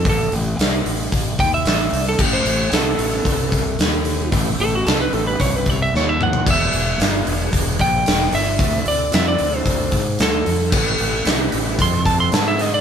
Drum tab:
CC |----------------|x---------------|----------------|x---------------|
HH |o-o-o-o-o-o-o-o-|--o-o-o-o-o-o-o-|o-o-o-o-o-o-----|--o-o-o-o-o-o-o-|
SD |----o-------o---|----o-------o---|----o-------o---|----o-------ooo-|
T2 |----------------|----------------|--------------o-|----------------|
FT |----------------|----------------|---------------o|----------------|
BD |o-------o-o-----|o-------o-o-----|o-------o-o-----|o-------o-o-----|

CC |----------------|x---------------|
HH |o-o-o-o-o-o-o-o-|--o-o-o-o-o-o-o-|
SD |----o-------o---|----o-------o-o-|
T2 |----------------|----------------|
FT |----------------|----------------|
BD |o-------o-o-----|o-------o-o-----|